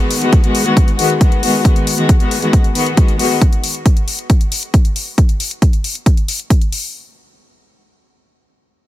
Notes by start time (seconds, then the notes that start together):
0.11 open hi-hat
0.22 D#3 G#3 B3 F#4, closed hi-hat
0.33 kick, closed hi-hat
0.44 D#3 G#3 B3 F#4, closed hi-hat
0.55 open hi-hat
0.66 D#3 G#3 B3 F#4, closed hi-hat
0.77 kick, closed hi-hat
0.88 closed hi-hat
0.99 D#3 G#3 B3 F#4, open hi-hat
1.10 closed hi-hat
1.21 D#3 G#3 B3 F#4, kick, closed hi-hat
1.32 closed hi-hat
1.43 D#3 G#3 B3 F#4, open hi-hat
1.65 D#3 G#3 B3 F#4, kick, closed hi-hat
1.76 closed hi-hat
1.87 open hi-hat
1.98 D#3 G#3 B3 F#4, closed hi-hat
2.09 kick, closed hi-hat
2.20 D#3 G#3 B3 F#4, closed hi-hat
2.31 open hi-hat
2.42 D#3 G#3 B3 F#4, closed hi-hat
2.53 kick, closed hi-hat
2.64 closed hi-hat
2.75 D#3 G#3 B3 F#4, open hi-hat
2.86 closed hi-hat
2.97 D#3 G#3 B3 F#4, kick, closed hi-hat
3.08 closed hi-hat
3.19 D#3 G#3 B3 F#4, open hi-hat
3.41 kick, closed hi-hat
3.53 closed hi-hat
3.64 open hi-hat
3.75 closed hi-hat
3.86 kick, closed hi-hat
3.97 closed hi-hat
4.08 open hi-hat
4.19 closed hi-hat
4.30 kick, closed hi-hat
4.41 closed hi-hat
4.52 open hi-hat
4.63 closed hi-hat
4.74 kick, closed hi-hat
4.85 closed hi-hat
4.96 open hi-hat
5.18 kick, closed hi-hat
5.29 closed hi-hat
5.40 open hi-hat
5.51 closed hi-hat
5.62 kick, closed hi-hat
5.73 closed hi-hat
5.84 open hi-hat
5.95 closed hi-hat
6.06 kick, closed hi-hat
6.17 closed hi-hat
6.28 open hi-hat
6.40 closed hi-hat
6.50 kick, closed hi-hat
6.61 closed hi-hat
6.72 open hi-hat